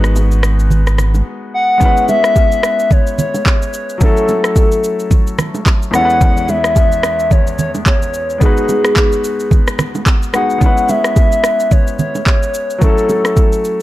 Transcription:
Already playing: sub bass G#1, grand piano G#3 B3 D#4 F#4 B4
0.04 cross-stick, shaker
0.16 high bongo, shaker
0.32 shaker
0.43 cross-stick, shaker
0.59 shaker
0.71 low conga, shaker
0.87 cross-stick, shaker
0.98 cross-stick, low conga, shaker
1.14 low bongo, shaker
1.54 soft synth lead F#5
1.78 grand piano G#3 B3 C#4, kick, low conga, shaker
1.83 grand piano E4 B4
1.97 shaker
2.08 soft synth lead E5, high bongo, low bongo, shaker
2.24 cross-stick, shaker
2.36 kick, high bongo, shaker
2.52 shaker
2.63 cross-stick, shaker
2.79 shaker
2.91 soft synth lead C#5, kick, low conga, shaker
3.07 shaker
3.18 soft synth lead C#5, low conga, shaker
3.34 low bongo, shaker
3.46 soft synth lead C#5, kick, clap, high bongo, shaker
3.62 shaker
3.74 shaker
3.89 shaker
3.98 grand piano F#3 A3 C#4, kick, low conga, shaker
4.02 grand piano E4 A4, soft synth lead A4
4.17 shaker
4.28 high bongo, low bongo, shaker
4.44 cross-stick, shaker
4.56 kick, high bongo, shaker
4.72 shaker
4.84 shaker
5.00 shaker
5.11 kick, low conga, shaker
5.27 shaker
5.38 cross-stick, low conga, shaker
5.54 low bongo, shaker
5.66 kick, clap, high bongo, shaker
5.82 shaker
5.91 grand piano E2 G#3 B3, soft synth lead F#5, cross-stick, shaker
5.95 grand piano C#4 E4 A4
6.05 grand piano B4
6.10 shaker
6.21 kick, low conga, shaker
6.37 shaker
6.48 soft synth lead E5, high bongo, low bongo, shaker
6.64 cross-stick, shaker
6.76 kick, high bongo, shaker
6.92 shaker
7.03 cross-stick, shaker
7.19 shaker
7.31 soft synth lead C#5, kick, low conga, shaker
7.47 shaker
7.59 soft synth lead C#5, low conga, shaker
7.75 low bongo, shaker
7.86 soft synth lead C#5, kick, clap, high bongo, shaker
8.02 shaker
8.14 shaker
8.30 shaker
8.38 grand piano G#3 B3 D#4, soft synth lead G#4, kick, low conga, shaker
8.44 grand piano F#4 B4
8.57 shaker
8.69 high bongo, low bongo, shaker
8.85 cross-stick, shaker
8.96 kick, clap, high bongo, shaker
9.12 shaker
9.24 shaker
9.40 shaker
9.51 kick, low conga, shaker
9.67 cross-stick, shaker
9.79 cross-stick, low conga, shaker
9.95 low bongo, shaker
10.06 kick, clap, high bongo, shaker
10.23 shaker
10.33 grand piano G#3 B3 D#4 F#4 G#4, soft synth lead F#5, cross-stick, shaker
10.50 shaker
10.58 grand piano G#3 B3 C#4, kick, low conga, shaker
10.64 grand piano E4 B4
10.77 shaker
10.89 soft synth lead E5, high bongo, low bongo, shaker
11.04 cross-stick, shaker
11.16 kick, high bongo, shaker
11.32 shaker
11.44 cross-stick, shaker
11.60 shaker
11.71 soft synth lead C#5, kick, low conga, shaker
11.87 shaker
11.99 soft synth lead C#5, low conga, shaker
12.15 low bongo, shaker
12.26 soft synth lead C#5, kick, clap, high bongo, shaker
12.43 shaker
12.54 shaker
12.70 shaker
12.78 grand piano F#3 A3 C#4, soft synth lead A4, kick, low conga, shaker
12.84 grand piano E4 A4
12.98 shaker
13.09 high bongo, low bongo, shaker
13.25 cross-stick, shaker
13.37 kick, high bongo, shaker
13.53 shaker
13.65 shaker

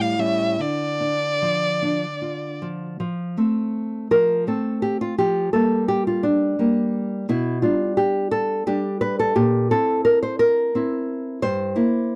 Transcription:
Already playing: nylon-string guitar A2 G3
0.01 violin F5
0.19 nylon-string guitar G3 C#4, violin E5
0.59 nylon-string guitar D3, violin D5
1.00 nylon-string guitar D4
1.42 nylon-string guitar F3
1.82 nylon-string guitar D4
2.22 nylon-string guitar F4
2.62 nylon-string guitar F3
3.00 nylon-string guitar F3
3.37 nylon-string guitar A3 C4
4.11 nylon-string guitar F3 A#4
4.47 nylon-string guitar A3 C4 A4
4.82 nylon-string guitar G4
5.01 nylon-string guitar F4
5.18 nylon-string guitar F3 G4
5.53 nylon-string guitar G3 A#3 A4
5.88 nylon-string guitar G4
6.07 nylon-string guitar F4
6.23 nylon-string guitar D4
6.59 nylon-string guitar G3 A#3
7.29 nylon-string guitar B2 E4
7.62 nylon-string guitar G3 D4 F4
7.97 nylon-string guitar G4
8.31 nylon-string guitar A4
8.67 nylon-string guitar G3 D4 G4
9.01 nylon-string guitar B4
9.19 nylon-string guitar A4
9.36 nylon-string guitar A#2 G4
9.71 nylon-string guitar C4 E4 A4
10.05 nylon-string guitar A#4
10.23 nylon-string guitar C5
10.39 nylon-string guitar A#4
10.75 nylon-string guitar C4 E4
11.42 nylon-string guitar G2 C5
11.75 nylon-string guitar A#3 E4

